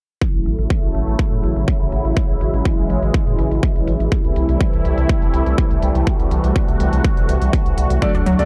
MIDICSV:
0, 0, Header, 1, 6, 480
1, 0, Start_track
1, 0, Tempo, 487805
1, 213, Time_signature, 4, 2, 24, 8
1, 8316, End_track
2, 0, Start_track
2, 0, Title_t, "Grand piano"
2, 0, Program_c, 0, 0
2, 7893, Note_on_c, 0, 50, 82
2, 7893, Note_on_c, 0, 57, 76
2, 7893, Note_on_c, 0, 62, 73
2, 7893, Note_on_c, 0, 66, 75
2, 7893, Note_on_c, 0, 69, 77
2, 7893, Note_on_c, 0, 74, 87
2, 7957, Note_off_c, 0, 50, 0
2, 7957, Note_off_c, 0, 57, 0
2, 7957, Note_off_c, 0, 62, 0
2, 7957, Note_off_c, 0, 66, 0
2, 7957, Note_off_c, 0, 69, 0
2, 7957, Note_off_c, 0, 74, 0
2, 8257, Note_on_c, 0, 50, 72
2, 8257, Note_on_c, 0, 57, 69
2, 8257, Note_on_c, 0, 62, 64
2, 8257, Note_on_c, 0, 66, 65
2, 8257, Note_on_c, 0, 69, 68
2, 8257, Note_on_c, 0, 74, 80
2, 8316, Note_off_c, 0, 50, 0
2, 8316, Note_off_c, 0, 57, 0
2, 8316, Note_off_c, 0, 62, 0
2, 8316, Note_off_c, 0, 66, 0
2, 8316, Note_off_c, 0, 69, 0
2, 8316, Note_off_c, 0, 74, 0
2, 8316, End_track
3, 0, Start_track
3, 0, Title_t, "Supersaw synth"
3, 0, Program_c, 1, 81
3, 211, Note_on_c, 1, 54, 66
3, 212, Note_on_c, 1, 49, 72
3, 212, Note_on_c, 1, 57, 69
3, 212, Note_on_c, 1, 64, 82
3, 213, Note_on_c, 1, 52, 67
3, 2113, Note_off_c, 1, 57, 0
3, 2133, Note_on_c, 1, 56, 65
3, 4013, Note_off_c, 1, 54, 0
3, 4014, Note_off_c, 1, 49, 0
3, 4014, Note_off_c, 1, 64, 0
3, 4034, Note_off_c, 1, 56, 0
3, 4053, Note_on_c, 1, 64, 81
3, 4054, Note_on_c, 1, 48, 76
3, 4054, Note_on_c, 1, 55, 71
3, 4054, Note_on_c, 1, 57, 68
3, 5953, Note_off_c, 1, 64, 0
3, 5972, Note_on_c, 1, 66, 83
3, 7853, Note_off_c, 1, 52, 0
3, 7855, Note_off_c, 1, 48, 0
3, 7855, Note_off_c, 1, 55, 0
3, 7855, Note_off_c, 1, 57, 0
3, 7894, Note_on_c, 1, 50, 72
3, 7894, Note_on_c, 1, 54, 70
3, 7894, Note_on_c, 1, 62, 73
3, 7895, Note_on_c, 1, 45, 80
3, 8316, Note_off_c, 1, 45, 0
3, 8316, Note_off_c, 1, 50, 0
3, 8316, Note_off_c, 1, 54, 0
3, 8316, Note_off_c, 1, 62, 0
3, 8316, Note_off_c, 1, 66, 0
3, 8316, End_track
4, 0, Start_track
4, 0, Title_t, "Synth pluck"
4, 0, Program_c, 2, 84
4, 7893, Note_on_c, 2, 54, 80
4, 7946, Note_off_c, 2, 54, 0
4, 8017, Note_on_c, 2, 62, 91
4, 8067, Note_off_c, 2, 62, 0
4, 8133, Note_on_c, 2, 54, 99
4, 8186, Note_off_c, 2, 54, 0
4, 8316, End_track
5, 0, Start_track
5, 0, Title_t, "Analog synth bass"
5, 0, Program_c, 3, 38
5, 337, Note_on_c, 3, 33, 81
5, 418, Note_off_c, 3, 33, 0
5, 452, Note_on_c, 3, 33, 95
5, 540, Note_off_c, 3, 33, 0
5, 577, Note_on_c, 3, 33, 91
5, 658, Note_off_c, 3, 33, 0
5, 817, Note_on_c, 3, 33, 83
5, 898, Note_off_c, 3, 33, 0
5, 932, Note_on_c, 3, 33, 94
5, 1019, Note_off_c, 3, 33, 0
5, 1057, Note_on_c, 3, 33, 85
5, 1138, Note_off_c, 3, 33, 0
5, 1297, Note_on_c, 3, 45, 82
5, 1378, Note_off_c, 3, 45, 0
5, 1411, Note_on_c, 3, 33, 101
5, 1499, Note_off_c, 3, 33, 0
5, 1536, Note_on_c, 3, 33, 84
5, 1617, Note_off_c, 3, 33, 0
5, 1776, Note_on_c, 3, 33, 86
5, 1857, Note_off_c, 3, 33, 0
5, 1892, Note_on_c, 3, 33, 88
5, 1979, Note_off_c, 3, 33, 0
5, 2016, Note_on_c, 3, 33, 81
5, 2097, Note_off_c, 3, 33, 0
5, 2256, Note_on_c, 3, 33, 79
5, 2337, Note_off_c, 3, 33, 0
5, 2372, Note_on_c, 3, 33, 95
5, 2459, Note_off_c, 3, 33, 0
5, 2496, Note_on_c, 3, 33, 94
5, 2577, Note_off_c, 3, 33, 0
5, 2736, Note_on_c, 3, 33, 85
5, 2817, Note_off_c, 3, 33, 0
5, 2852, Note_on_c, 3, 33, 89
5, 2940, Note_off_c, 3, 33, 0
5, 2977, Note_on_c, 3, 33, 88
5, 3057, Note_off_c, 3, 33, 0
5, 3217, Note_on_c, 3, 45, 81
5, 3298, Note_off_c, 3, 45, 0
5, 3332, Note_on_c, 3, 33, 97
5, 3419, Note_off_c, 3, 33, 0
5, 3457, Note_on_c, 3, 33, 81
5, 3538, Note_off_c, 3, 33, 0
5, 3697, Note_on_c, 3, 33, 81
5, 3778, Note_off_c, 3, 33, 0
5, 3813, Note_on_c, 3, 33, 89
5, 3900, Note_off_c, 3, 33, 0
5, 3937, Note_on_c, 3, 33, 85
5, 4018, Note_off_c, 3, 33, 0
5, 4177, Note_on_c, 3, 36, 80
5, 4258, Note_off_c, 3, 36, 0
5, 4292, Note_on_c, 3, 36, 89
5, 4380, Note_off_c, 3, 36, 0
5, 4417, Note_on_c, 3, 36, 91
5, 4498, Note_off_c, 3, 36, 0
5, 4657, Note_on_c, 3, 36, 78
5, 4738, Note_off_c, 3, 36, 0
5, 4772, Note_on_c, 3, 36, 92
5, 4860, Note_off_c, 3, 36, 0
5, 4897, Note_on_c, 3, 36, 86
5, 4978, Note_off_c, 3, 36, 0
5, 5137, Note_on_c, 3, 31, 84
5, 5217, Note_off_c, 3, 31, 0
5, 5252, Note_on_c, 3, 36, 98
5, 5339, Note_off_c, 3, 36, 0
5, 5377, Note_on_c, 3, 36, 80
5, 5457, Note_off_c, 3, 36, 0
5, 5616, Note_on_c, 3, 36, 86
5, 5697, Note_off_c, 3, 36, 0
5, 5731, Note_on_c, 3, 36, 92
5, 5819, Note_off_c, 3, 36, 0
5, 5856, Note_on_c, 3, 36, 86
5, 5937, Note_off_c, 3, 36, 0
5, 6096, Note_on_c, 3, 36, 78
5, 6177, Note_off_c, 3, 36, 0
5, 6211, Note_on_c, 3, 36, 90
5, 6299, Note_off_c, 3, 36, 0
5, 6336, Note_on_c, 3, 36, 89
5, 6417, Note_off_c, 3, 36, 0
5, 6577, Note_on_c, 3, 36, 85
5, 6658, Note_off_c, 3, 36, 0
5, 6691, Note_on_c, 3, 36, 96
5, 6779, Note_off_c, 3, 36, 0
5, 6817, Note_on_c, 3, 36, 89
5, 6897, Note_off_c, 3, 36, 0
5, 7057, Note_on_c, 3, 31, 80
5, 7138, Note_off_c, 3, 31, 0
5, 7172, Note_on_c, 3, 36, 96
5, 7259, Note_off_c, 3, 36, 0
5, 7296, Note_on_c, 3, 36, 87
5, 7377, Note_off_c, 3, 36, 0
5, 7537, Note_on_c, 3, 36, 87
5, 7618, Note_off_c, 3, 36, 0
5, 7653, Note_on_c, 3, 36, 93
5, 7740, Note_off_c, 3, 36, 0
5, 7777, Note_on_c, 3, 36, 85
5, 7858, Note_off_c, 3, 36, 0
5, 8017, Note_on_c, 3, 38, 82
5, 8098, Note_off_c, 3, 38, 0
5, 8133, Note_on_c, 3, 38, 91
5, 8220, Note_off_c, 3, 38, 0
5, 8258, Note_on_c, 3, 38, 89
5, 8316, Note_off_c, 3, 38, 0
5, 8316, End_track
6, 0, Start_track
6, 0, Title_t, "Drums"
6, 212, Note_on_c, 9, 36, 100
6, 310, Note_off_c, 9, 36, 0
6, 337, Note_on_c, 9, 42, 24
6, 436, Note_off_c, 9, 42, 0
6, 452, Note_on_c, 9, 42, 91
6, 551, Note_off_c, 9, 42, 0
6, 577, Note_on_c, 9, 42, 49
6, 676, Note_off_c, 9, 42, 0
6, 692, Note_on_c, 9, 36, 96
6, 790, Note_off_c, 9, 36, 0
6, 818, Note_on_c, 9, 42, 24
6, 916, Note_off_c, 9, 42, 0
6, 932, Note_on_c, 9, 42, 86
6, 1031, Note_off_c, 9, 42, 0
6, 1057, Note_on_c, 9, 42, 49
6, 1156, Note_off_c, 9, 42, 0
6, 1172, Note_on_c, 9, 36, 107
6, 1270, Note_off_c, 9, 36, 0
6, 1297, Note_on_c, 9, 42, 24
6, 1396, Note_off_c, 9, 42, 0
6, 1412, Note_on_c, 9, 42, 91
6, 1511, Note_off_c, 9, 42, 0
6, 1537, Note_on_c, 9, 42, 53
6, 1636, Note_off_c, 9, 42, 0
6, 1652, Note_on_c, 9, 36, 87
6, 1750, Note_off_c, 9, 36, 0
6, 1777, Note_on_c, 9, 42, 25
6, 1876, Note_off_c, 9, 42, 0
6, 1892, Note_on_c, 9, 42, 91
6, 1990, Note_off_c, 9, 42, 0
6, 2017, Note_on_c, 9, 42, 49
6, 2115, Note_off_c, 9, 42, 0
6, 2132, Note_on_c, 9, 36, 108
6, 2230, Note_off_c, 9, 36, 0
6, 2257, Note_on_c, 9, 42, 24
6, 2355, Note_off_c, 9, 42, 0
6, 2372, Note_on_c, 9, 42, 89
6, 2471, Note_off_c, 9, 42, 0
6, 2497, Note_on_c, 9, 42, 49
6, 2596, Note_off_c, 9, 42, 0
6, 2612, Note_on_c, 9, 36, 100
6, 2710, Note_off_c, 9, 36, 0
6, 2737, Note_on_c, 9, 42, 23
6, 2836, Note_off_c, 9, 42, 0
6, 2852, Note_on_c, 9, 42, 83
6, 2950, Note_off_c, 9, 42, 0
6, 2977, Note_on_c, 9, 42, 47
6, 3076, Note_off_c, 9, 42, 0
6, 3092, Note_on_c, 9, 36, 116
6, 3190, Note_off_c, 9, 36, 0
6, 3218, Note_on_c, 9, 42, 23
6, 3316, Note_off_c, 9, 42, 0
6, 3333, Note_on_c, 9, 42, 84
6, 3431, Note_off_c, 9, 42, 0
6, 3458, Note_on_c, 9, 42, 50
6, 3556, Note_off_c, 9, 42, 0
6, 3572, Note_on_c, 9, 36, 98
6, 3670, Note_off_c, 9, 36, 0
6, 3698, Note_on_c, 9, 42, 25
6, 3796, Note_off_c, 9, 42, 0
6, 3813, Note_on_c, 9, 42, 85
6, 3911, Note_off_c, 9, 42, 0
6, 3938, Note_on_c, 9, 42, 50
6, 4036, Note_off_c, 9, 42, 0
6, 4052, Note_on_c, 9, 36, 108
6, 4150, Note_off_c, 9, 36, 0
6, 4178, Note_on_c, 9, 42, 23
6, 4276, Note_off_c, 9, 42, 0
6, 4293, Note_on_c, 9, 42, 89
6, 4391, Note_off_c, 9, 42, 0
6, 4417, Note_on_c, 9, 42, 47
6, 4516, Note_off_c, 9, 42, 0
6, 4532, Note_on_c, 9, 36, 105
6, 4630, Note_off_c, 9, 36, 0
6, 4658, Note_on_c, 9, 42, 22
6, 4756, Note_off_c, 9, 42, 0
6, 4772, Note_on_c, 9, 42, 81
6, 4871, Note_off_c, 9, 42, 0
6, 4898, Note_on_c, 9, 42, 50
6, 4996, Note_off_c, 9, 42, 0
6, 5012, Note_on_c, 9, 36, 112
6, 5012, Note_on_c, 9, 42, 48
6, 5111, Note_off_c, 9, 36, 0
6, 5111, Note_off_c, 9, 42, 0
6, 5137, Note_on_c, 9, 42, 24
6, 5236, Note_off_c, 9, 42, 0
6, 5252, Note_on_c, 9, 42, 82
6, 5350, Note_off_c, 9, 42, 0
6, 5377, Note_on_c, 9, 42, 47
6, 5475, Note_off_c, 9, 42, 0
6, 5491, Note_on_c, 9, 42, 47
6, 5492, Note_on_c, 9, 36, 100
6, 5590, Note_off_c, 9, 36, 0
6, 5590, Note_off_c, 9, 42, 0
6, 5616, Note_on_c, 9, 42, 24
6, 5715, Note_off_c, 9, 42, 0
6, 5732, Note_on_c, 9, 42, 81
6, 5830, Note_off_c, 9, 42, 0
6, 5857, Note_on_c, 9, 42, 50
6, 5955, Note_off_c, 9, 42, 0
6, 5972, Note_on_c, 9, 36, 110
6, 5972, Note_on_c, 9, 42, 42
6, 6070, Note_off_c, 9, 36, 0
6, 6070, Note_off_c, 9, 42, 0
6, 6097, Note_on_c, 9, 42, 23
6, 6195, Note_off_c, 9, 42, 0
6, 6212, Note_on_c, 9, 42, 85
6, 6310, Note_off_c, 9, 42, 0
6, 6336, Note_on_c, 9, 42, 49
6, 6435, Note_off_c, 9, 42, 0
6, 6452, Note_on_c, 9, 36, 101
6, 6452, Note_on_c, 9, 42, 44
6, 6550, Note_off_c, 9, 36, 0
6, 6550, Note_off_c, 9, 42, 0
6, 6577, Note_on_c, 9, 42, 21
6, 6675, Note_off_c, 9, 42, 0
6, 6692, Note_on_c, 9, 42, 82
6, 6790, Note_off_c, 9, 42, 0
6, 6817, Note_on_c, 9, 42, 46
6, 6915, Note_off_c, 9, 42, 0
6, 6932, Note_on_c, 9, 36, 114
6, 6932, Note_on_c, 9, 42, 47
6, 7030, Note_off_c, 9, 36, 0
6, 7030, Note_off_c, 9, 42, 0
6, 7057, Note_on_c, 9, 42, 23
6, 7155, Note_off_c, 9, 42, 0
6, 7172, Note_on_c, 9, 42, 79
6, 7270, Note_off_c, 9, 42, 0
6, 7297, Note_on_c, 9, 42, 45
6, 7395, Note_off_c, 9, 42, 0
6, 7412, Note_on_c, 9, 36, 93
6, 7412, Note_on_c, 9, 42, 48
6, 7510, Note_off_c, 9, 36, 0
6, 7511, Note_off_c, 9, 42, 0
6, 7537, Note_on_c, 9, 42, 23
6, 7636, Note_off_c, 9, 42, 0
6, 7652, Note_on_c, 9, 42, 76
6, 7751, Note_off_c, 9, 42, 0
6, 7777, Note_on_c, 9, 42, 49
6, 7876, Note_off_c, 9, 42, 0
6, 7892, Note_on_c, 9, 36, 102
6, 7892, Note_on_c, 9, 42, 45
6, 7990, Note_off_c, 9, 36, 0
6, 7991, Note_off_c, 9, 42, 0
6, 8017, Note_on_c, 9, 42, 22
6, 8115, Note_off_c, 9, 42, 0
6, 8132, Note_on_c, 9, 42, 85
6, 8230, Note_off_c, 9, 42, 0
6, 8257, Note_on_c, 9, 42, 46
6, 8316, Note_off_c, 9, 42, 0
6, 8316, End_track
0, 0, End_of_file